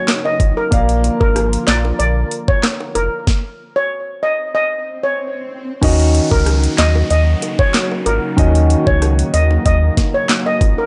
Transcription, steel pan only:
0.25 D#5
0.57 A#4
1.21 A#4
1.67 D5
1.99 D5
2.48 C#5
2.95 A#4
3.76 C#5
4.23 D#5
4.55 D#5
5.03 C#5
6.31 A#4
6.79 D#5
7.11 D#5
7.59 C#5
8.06 A#4
8.87 C#5
9.34 D#5
9.66 D#5
10.14 C#5
10.46 D#5
10.78 A#4

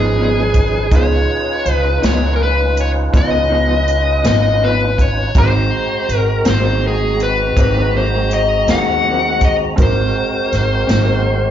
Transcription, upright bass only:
Already playing: G#1
0.92 C#2
1.66 C#2
2.04 C#2
3.14 C#2
4.24 G#1
5.35 G#1
6.09 G#1
6.46 G#1
7.56 G#1
8.67 D#2
9.78 G#1
10.53 G#1
10.89 G#1

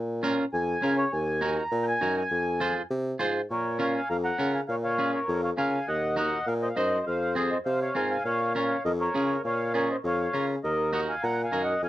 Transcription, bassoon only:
Already playing: A#2
0.53 F2
0.83 C#3
1.13 D#2
1.72 A#2
2.01 F#2
2.31 F2
2.91 C3
3.21 G#2
3.50 A#2
4.10 F2
4.39 C#3
4.69 A#2
5.28 F2
5.58 C#3
5.88 D#2
6.47 A#2
6.77 F#2
7.06 F2
7.66 C3
7.96 G#2
8.25 A#2
8.85 F2
9.15 C#3
9.45 A#2
10.04 F2
10.34 C#3
10.64 D#2
11.23 A#2
11.53 F#2
11.82 F2

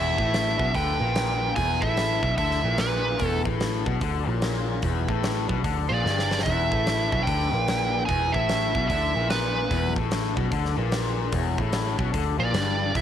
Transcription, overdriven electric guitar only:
Already playing: E2
0.17 A2
0.59 B2
0.74 D3
1.01 A#2
1.56 E2
1.81 A2
2.23 B2
2.38 D3
2.64 A#2
3.19 E2
3.44 A2
3.86 B2
4.02 D3
4.28 A#2
4.83 E2
5.08 A2
5.49 B2
5.64 D3
5.90 A#2
6.04 G2
6.46 E2
6.71 A2
7.12 B2
7.27 D3
7.53 A#2
8.09 E2
8.34 A2
8.75 B2
8.90 D3
9.16 A#2
9.71 E2
9.96 A2
10.37 B2
10.52 D3
10.77 A#2
11.33 E2
11.58 A2
11.98 B2
12.13 D3
12.38 A#2
12.54 G2
12.94 E2

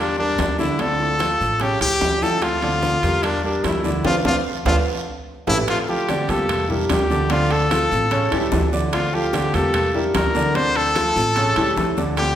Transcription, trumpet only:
0.00 D4
0.19 D4
0.59 E4
0.80 A4
1.61 G4
1.82 G4
2.22 A4
2.43 F4
3.23 D4
3.44 D4
3.64 E4
4.06 F4
4.26 F4
4.67 F4
5.48 E4
5.69 F4
5.89 G4
6.30 A4
6.91 G4
7.31 F4
7.51 A4
8.93 F4
9.14 G4
9.54 A4
10.16 A#4
10.55 C5
10.76 A4
12.17 G4

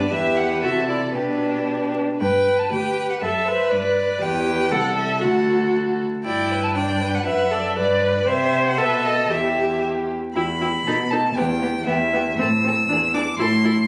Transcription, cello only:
Already playing: G2
0.12 E2
0.62 C3
1.14 B2
2.21 G2
2.71 D2
3.22 F#2
3.72 G2
4.22 E2
4.72 C2
5.23 D2
6.26 G2
7.28 F#2
7.77 G2
8.27 C3
8.78 B2
9.30 E2
10.36 E2
10.85 B2
11.36 E2
11.87 E2
12.39 A2
12.89 E2
13.40 A2

